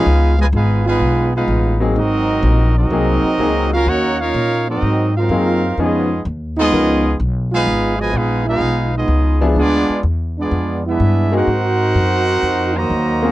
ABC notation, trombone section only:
X:1
M:4/4
L:1/8
Q:"Swing" 1/4=126
K:Dblyd
V:1 name="Trombone section"
[A,_CF] [_C,F,A,] [A,CF] [A,CF]2 [A,CF]2 z | [_G,CE]3 [G,CE]4 F | [B,D_G] [B,DF]2 [_G,CE]2 [G,CF]3 | [A,_CE]2 z [A,CE]3 z [A,CF]- |
[A,_CF] [_C,F,A,] [A,CF] [A,CF]2 [A,CE]2 z | [A,=B,=D]2 z [A,B,D]2 [A,B,_F]2 [CE_G]- | [CE_G]4- [CEG] [E,_G,B,]3 |]